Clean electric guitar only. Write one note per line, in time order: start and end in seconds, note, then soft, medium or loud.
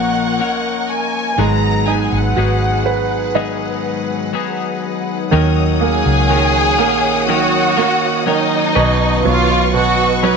0.00 0.40 A#2 medium
0.00 0.40 F3 medium
0.00 0.38 A#3 medium
0.00 0.39 C#4 medium
0.00 0.40 A#4 medium
0.40 1.38 A#3 soft
0.40 1.38 C#4 soft
0.40 1.39 A#4 soft
1.38 1.87 G#2 medium
1.38 1.87 D#3 medium
1.38 1.87 F#3 medium
1.38 1.88 B3 medium
1.38 1.87 D#4 medium
1.38 1.86 G#4 medium
1.87 2.35 F#3 soft
1.87 2.36 B3 soft
1.87 2.37 D#4 soft
1.87 2.36 G#4 soft
2.37 3.35 F#3 soft
2.37 3.35 B3 soft
2.37 3.36 D#4 soft
2.37 3.35 G#4 medium
3.35 4.33 G#2 medium
3.35 5.32 D#3 medium
3.35 4.33 F#3 medium
3.35 4.33 B3 medium
3.35 4.34 D#4 medium
3.35 4.34 G#4 medium
4.33 5.32 F#3 medium
4.33 5.32 B3 soft
4.33 5.32 D#4 medium
4.33 5.32 G#4 medium
5.32 6.33 D#3 medium
5.32 6.29 F#3 medium
5.32 6.30 C#4 medium
5.32 6.31 D#4 medium
5.32 6.31 A#4 medium
6.30 6.79 F#3 medium
6.30 6.79 C#4 medium
6.30 6.79 D#4 medium
6.30 6.77 A#4 medium
6.79 7.27 C#4 soft
6.79 7.28 D#4 soft
6.79 7.28 A#4 medium
7.28 7.77 F#3 medium
7.28 7.77 C#4 medium
7.28 7.77 D#4 medium
7.28 7.75 A#4 medium
7.77 8.25 C#4 soft
7.77 8.26 D#4 soft
7.77 8.26 A#4 medium
8.26 8.75 F#3 medium
8.26 8.75 C#4 medium
8.26 8.75 D#4 medium
8.26 8.75 A#4 medium
8.75 10.24 B2 medium
8.75 10.24 D#3 medium
8.75 10.22 F#3 medium
8.75 10.23 C#4 medium
8.75 10.23 D#4 medium
8.75 10.23 B4 medium
10.23 10.37 F#3 medium
10.23 10.37 C#4 medium
10.23 10.37 D#4 medium
10.23 10.37 B4 medium